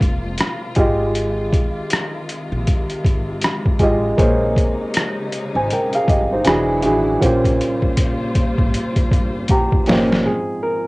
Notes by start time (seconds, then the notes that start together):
Already playing: C3 G#3 A#3 F4 A#4 C5
0.01 F1, kick, closed hi-hat
0.38 cross-stick, closed hi-hat
0.75 G#1 C3 D#3 G#3 F4 G4, kick, closed hi-hat
0.79 D#5
1.15 closed hi-hat
1.53 kick, closed hi-hat
1.90 cross-stick, closed hi-hat
2.29 closed hi-hat
2.52 A#1
2.67 kick, closed hi-hat
2.90 closed hi-hat
3.05 G#1, kick, closed hi-hat
3.41 cross-stick, closed hi-hat
3.65 kick
3.79 A1 G#3 F4 G4, kick, closed hi-hat
3.83 D#5
4.17 A#1 C#3 A#3 D#4 G#4 C5 C#5 D#5, kick, closed hi-hat
4.56 kick, closed hi-hat
4.94 cross-stick, closed hi-hat
5.32 closed hi-hat
5.55 G#1 C5 G#5
5.70 A#4 G5, closed hi-hat
5.93 G#4 F5, closed hi-hat
6.08 G1 G4 D#5, kick, closed hi-hat
6.33 D#4 C5
6.45 E1 D3 E3 F#3 D4 E4 F#4 G#4, cross-stick, closed hi-hat
6.83 A1 E3 D4 F#4 G#4, closed hi-hat
7.20 A#1 A#2 C#3 G3 A#3 C#4 F4 G4 C5, kick, closed hi-hat
7.44 kick, closed hi-hat
7.61 closed hi-hat
7.82 kick
7.97 kick, closed hi-hat
8.35 kick, closed hi-hat
8.58 G#1, kick
8.74 closed hi-hat
8.96 kick, closed hi-hat
9.11 G1, kick, closed hi-hat
9.48 G4 A#5, kick, closed hi-hat
9.72 kick
9.86 G1 A#2 A#3 C#4 F4 D#5, snare, open hi-hat
9.90 G4 C5
10.12 snare
10.25 G#2 F3 C4 G#4
10.63 A#4